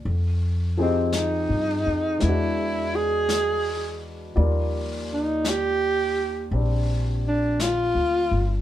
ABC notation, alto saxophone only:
X:1
M:4/4
L:1/8
Q:"Swing" 1/4=56
K:Eb
V:1 name="Alto saxophone"
z C E2 =E ^G2 z | z E G2 z D F2 |]